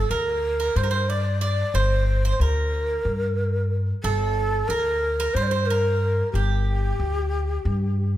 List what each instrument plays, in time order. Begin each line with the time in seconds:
Already playing: bouzouki A4, ney A4
0.09 upright bass D2, ney A#4, bouzouki A#4
0.60 bouzouki A#4
0.76 upright bass G2, ney C5, bouzouki C5
0.83 bouzouki A#4
0.91 bouzouki C5
1.09 ney D5, bouzouki D5
1.41 bouzouki D5, ney D5
1.74 upright bass G1, ney C5, bouzouki C5
2.25 bouzouki C5
2.32 ney C5
2.40 upright bass D2, ney A#4, bouzouki A#4
3.05 upright bass G2
4.03 upright bass G1, ney A4, bouzouki A4
4.68 upright bass D2, ney A#4, bouzouki A#4
5.20 bouzouki A#4
5.34 upright bass G2, ney C5, bouzouki C5
5.42 ney D5
5.47 ney C5, bouzouki C5
5.66 ney A#4
5.70 bouzouki A#4
6.32 upright bass G1, ney G4, bouzouki G4
7.00 upright bass D2
7.65 upright bass G2